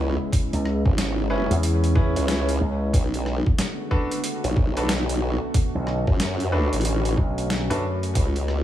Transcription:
Already playing: C#2 C#3 G#3 B3 E4, sub drop
0.33 C#4, kick, closed hi-hat
0.53 C#2, closed hi-hat
0.65 cross-stick
0.86 G#1, kick
0.98 snare, closed hi-hat
1.30 G1 C#4 E4 G#4 B4
1.50 E2, closed hi-hat
1.63 closed hi-hat
1.84 closed hi-hat
1.95 C#4 E4 G#4 B4, kick
2.16 C#2, closed hi-hat
2.28 C#4 E4 G#4 B4, snare, closed hi-hat
2.49 closed hi-hat
2.61 C#2
2.94 B1 D3 A3 B3 F#4, kick, closed hi-hat
3.14 closed hi-hat
3.26 cross-stick
3.46 kick
3.58 snare, closed hi-hat
3.91 D4 F#4 A4 B4, kick
4.11 closed hi-hat
4.24 closed hi-hat
4.44 B1, closed hi-hat
4.57 kick
4.77 D4 F#4 A4 B4, closed hi-hat
4.89 snare, closed hi-hat
5.09 closed hi-hat
5.54 C#4, kick, closed hi-hat
5.75 B1
5.87 cross-stick
6.07 F#2, kick
6.20 snare, closed hi-hat
6.40 closed hi-hat
6.52 D4 F#4 A4 B4
6.73 A1, closed hi-hat
6.81 closed hi-hat
6.85 closed hi-hat
7.05 closed hi-hat
7.17 B1, kick
7.38 closed hi-hat
7.50 snare, closed hi-hat
7.70 F#2 D4 F#4 A4 B4, closed hi-hat
8.03 closed hi-hat
8.15 C#2 C#3 G#3 B3 E4, kick, closed hi-hat
8.36 closed hi-hat
8.48 cross-stick

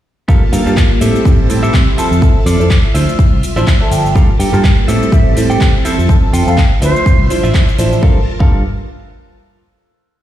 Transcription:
0.28 G3 A#3 F4 G4 A4 A#4 F5 A5, kick, shaker
0.53 G2 G4 A4 A#4 F5, open hi-hat, shaker
0.66 G2 G3 A#3 F4 A5, shaker
0.77 kick, clap, shaker
1.01 A2 G3 C4 E4 G4 A4 C5 E5 A5, open hi-hat, shaker
1.16 shaker
1.25 A1 G3 C4 E4 A4, kick, shaker
1.49 A2 G3 C4 E4 A4, open hi-hat, shaker
1.63 G4 A4 C5 E5, shaker
1.74 C3, kick, clap, shaker
1.98 F3 C4 E4 F4 A4 C5 E5, muted fingered electric bass stroke, open hi-hat, shaker
2.11 F2, shaker
2.22 F3 C4 A4 E5, kick, shaker
2.35 muted fingered electric bass stroke
2.46 F2 F4 A4 C5 D5, open hi-hat, shaker
2.60 F2 F3 C4 E4 A4, shaker
2.70 kick, clap, shaker
2.94 D2 F3 D4 E4 F4 C5 D5 E5 C6, open hi-hat, shaker
3.09 shaker
3.19 C2, kick, shaker
3.32 C2
3.43 open hi-hat, shaker
3.56 A1 F3 D4 E4 F4 C5 D5 E5, shaker
3.67 E5, kick, clap, shaker
3.81 F3 D4 A4 E5
3.91 G1 G5, open hi-hat, shaker
4.05 muted clean electric guitar stroke, shaker
4.15 G3 A#3 F4 G4 A4 A#4 F5 A5, kick, shaker
4.39 G2 G4 A4 A#4 G5, open hi-hat, shaker
4.53 G2 G3 A#3 F4 A5, shaker
4.64 kick, clap, shaker
4.88 A2 G3 C4 E4 G4 A4 C5 E5, open hi-hat, shaker
5.03 shaker
5.12 A1 G3 C4 E4 A4 E5, kick, shaker
5.36 A2 G3 C4 E4 A4, open hi-hat, shaker
5.50 G4 A4 C5 G5, shaker
5.61 C3, kick, clap, shaker
5.84 F3 C4 E4 F4 A4 C5 E5, muted fingered electric bass stroke, open hi-hat, shaker
5.98 F2, shaker
6.09 F3 C4 A4 E5, kick, shaker
6.22 muted fingered electric bass stroke
6.33 F2 F4 A4 C5 G5, open hi-hat, shaker
6.47 F2 F3 C4 E4 A4 F5, shaker
6.58 kick, clap, shaker
6.81 D2 F3 D4 E4 F4 C5 D5 E5 C6, open hi-hat, shaker
6.96 shaker
7.06 C2, kick, shaker
7.19 C2
7.30 F3 D4 E4 C5, open hi-hat, shaker
7.43 A1 F4 C5 D5 E5, shaker
7.54 F3 D4 E4 C5, kick, clap, shaker
7.69 shaker
7.78 A1 F3 D4 E4 C5, open hi-hat, shaker
7.92 muted clean electric guitar stroke, shaker
8.02 G2 G3 A#3 F4 A4 A#4 F5 A5, kick
8.39 G2 G3 A#3 F4 A4 A#4 F5, kick

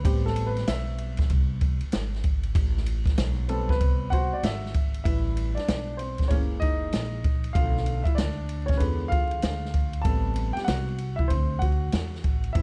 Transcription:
0.04 A1 G3 B3 C4 G4, kick, ride
0.26 A4, snare
0.36 ride
0.46 B4
0.56 snare, ride
0.67 B1 E5, snare, hi-hat pedal, ride
0.98 ride
1.17 kick, snare, ride
1.30 C2, kick, ride
1.61 kick, ride
1.81 muted upright bass stroke, ride
1.92 G#1, snare, hi-hat pedal, ride
2.15 snare
2.24 kick, ride
2.43 ride
2.55 A1, kick, ride
2.77 snare
2.86 ride
3.06 kick, snare, ride
3.18 B1, snare, hi-hat pedal, ride
3.48 G3 B3 C4 A4, ride
3.69 B4, kick, snare
3.80 C2, kick, ride
4.10 F#4 C5 F#5, kick, ride
4.32 D5, muted upright bass stroke
4.43 G#1 E5, snare, hi-hat pedal, ride
4.66 snare
4.74 kick, ride
4.94 ride
5.04 A1 E3 G3 E4 B4 E5, kick, ride
5.37 ride
5.55 D4 D5, muted upright bass stroke, snare, ride
5.68 B1, snare, hi-hat pedal, ride
5.97 C4 C5, ride
6.18 kick, snare, ride
6.28 F#1 E3 G#3 A#3 C#4 C#5, kick, ride
6.60 D#4 D#5, kick, ride
6.93 A#1, snare, hi-hat pedal, ride
7.24 kick, ride
7.44 ride
7.53 B1 D3 F3 A3 F4 F5, kick, ride
7.77 snare
7.86 ride
8.04 E4 E5, kick, ride
8.15 D2 D4 D5, snare, hi-hat pedal, ride
8.49 ride
8.66 C#4 C#5, kick, ride
8.71 snare
8.77 E2 D3 F3 G#3 B3 B4, ride
9.08 F4 F5, kick, ride
9.31 ride
9.42 D2, snare, hi-hat pedal, ride
9.65 snare
9.74 kick, ride
9.93 ride
10.02 A1 C3 G3 B3 A4 A5, kick, ride
10.36 ride
10.53 G4 G5, ride
10.57 snare
10.64 C2 F#4 F#5, snare, hi-hat pedal, ride
10.98 ride
11.16 E4 E5, kick
11.28 D2 C4 C5, kick, ride
11.59 F#4 F#5, kick, ride
11.92 E2, snare, hi-hat pedal, ride
12.15 snare
12.24 A1, kick, ride
12.44 ride
12.53 A1 G3 B3 C4 E4 E5, kick, ride

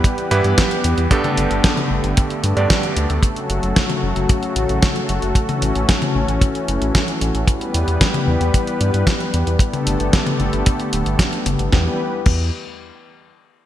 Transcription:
Already playing: E3 G3 B3 E4 G4 B4
0.04 kick, closed hi-hat
0.18 closed hi-hat
0.31 G2 E3 B3 E4 G4 B4, closed hi-hat
0.44 G2, closed hi-hat
0.58 kick, snare, closed hi-hat
0.71 closed hi-hat
0.84 E2, closed hi-hat
0.98 E2, closed hi-hat
1.11 G2 D3 A3 B3 D4 G4 A4, kick, closed hi-hat
1.24 closed hi-hat, high tom
1.37 G1, closed hi-hat
1.51 G1, closed hi-hat
1.64 kick, snare, closed hi-hat
1.77 closed hi-hat, high tom
1.90 G1
2.04 G1, closed hi-hat
2.17 kick, closed hi-hat
2.30 closed hi-hat
2.44 G2, closed hi-hat
2.57 G2 B3 D4 G4 D5, closed hi-hat
2.70 kick, snare, closed hi-hat
2.83 closed hi-hat
2.97 D2, closed hi-hat
3.10 D2, closed hi-hat
3.23 C#3 F#3 F#4, kick, closed hi-hat
3.36 closed hi-hat
3.50 F#1, closed hi-hat
3.63 F#1, closed hi-hat
3.76 kick, snare, closed hi-hat
3.90 closed hi-hat, high tom
4.03 F#1
4.16 F#1, closed hi-hat
4.29 kick, closed hi-hat
4.43 closed hi-hat
4.56 A1, closed hi-hat
4.69 A1, closed hi-hat
4.82 kick, snare, closed hi-hat
4.96 closed hi-hat
5.09 F#1, closed hi-hat
5.22 F#1, closed hi-hat
5.35 E3 C#4, kick, closed hi-hat
5.49 closed hi-hat, high tom
5.62 A1, closed hi-hat
5.75 A1, closed hi-hat
5.89 kick, snare, closed hi-hat
6.02 closed hi-hat, high tom
6.15 A1
6.28 A1, closed hi-hat
6.41 kick, closed hi-hat
6.55 closed hi-hat
6.68 F#1, closed hi-hat
6.82 A1, closed hi-hat
6.95 kick, snare, closed hi-hat
7.08 closed hi-hat
7.21 A1, closed hi-hat
7.35 A1, closed hi-hat
7.48 G3 B3 G4 B4, kick, closed hi-hat
7.61 closed hi-hat
7.74 E2, closed hi-hat
7.88 E2, closed hi-hat
8.01 kick, snare, closed hi-hat
8.14 closed hi-hat, high tom
8.27 E2
8.41 E2, closed hi-hat
8.54 kick, closed hi-hat
8.67 closed hi-hat
8.81 G2, closed hi-hat
8.94 G2, closed hi-hat
9.07 kick, snare, closed hi-hat
9.20 closed hi-hat
9.34 E2, closed hi-hat
9.47 E2, closed hi-hat
9.59 D3 A3 B3 G4 A4, kick, closed hi-hat
9.73 closed hi-hat, high tom
9.87 G1, closed hi-hat
10.00 G1, closed hi-hat
10.13 kick, snare, closed hi-hat
10.27 closed hi-hat, high tom
10.40 G1, closed hi-hat
10.53 G1, closed hi-hat
10.66 kick, closed hi-hat
10.80 closed hi-hat
10.93 D1, closed hi-hat
11.06 G1, closed hi-hat
11.19 kick, snare, closed hi-hat
11.33 closed hi-hat
11.46 G1, closed hi-hat, high tom
11.59 G1, closed hi-hat
11.72 E2 E3 G3 B3 G4 B4, kick, snare
12.26 E2, kick, crash

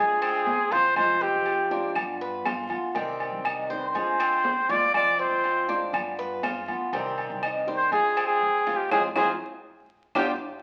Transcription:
Already playing: D2 D3 G#3 C4 F4 G#4
0.22 C4, low agogo, claves
0.46 D2, muted steel-string acoustic guitar stroke, low timbale
0.71 C2 G#3 C4 F4 C5, low agogo
0.96 F2 C3 F3 G#3 C4 F4 C5, low agogo, claves
1.21 C4 G4
1.33 F2
1.46 F3 G#3 C4 F4, low agogo
1.71 F3 G#3 C4 D4 F4
1.95 G2 G3 B3 F4, low agogo, claves
2.21 B4
2.45 G2 F4, muted steel-string acoustic guitar stroke, low timbale, low agogo, claves
2.69 D2 B3 F4, low agogo
2.94 C2 C3 D#3 G3 C4 G4, low agogo
3.20 low agogo
3.32 C2
3.44 D#3 G3 C4 D#4 G4, low agogo, claves
3.69 D#3 G3 C4 G4 C5
3.79 C5
3.95 D2 D3 G#3 C4 F4 G#4, low agogo
4.20 C4, low agogo, claves
4.44 D2, muted steel-string acoustic guitar stroke, low timbale
4.69 D#2 G#3 C4 F4 D5, low agogo
4.94 F2 C3 F3 G#3 C4 F4 D5, low agogo, claves
5.19 C4 C5
5.31 F2
5.43 F3 G#3 C4 F4, low agogo
5.68 F3 G#3 C4 D4 F4
5.93 G2 G3 B3 F4, low agogo, claves
6.19 B4
6.43 G2 F4, muted steel-string acoustic guitar stroke, low timbale, low agogo, claves
6.68 D2 B3 F4, low agogo
6.92 C2 C3 D#3 G3 C4 G4, low agogo
7.18 low agogo
7.30 C2
7.43 D#3 G3 C4 D#4 G4, low agogo, claves
7.67 D#3 G3 C4 G4 C5
7.76 C5
7.92 D2 D3 G#3 C4 F4 G#4, low agogo
8.17 C4, low agogo, claves
8.26 G#4
8.42 D2, muted steel-string acoustic guitar stroke
8.67 D2 G#3 C4 F4, low agogo
8.77 G4
8.91 F2 F3 G#3 C4 F4 G#4, high timbale, claves
9.16 F2 F3 G#3 C4 F4 G#4, high timbale, claves
10.15 G1 G3 B3 D4 F4 G4, high timbale, claves

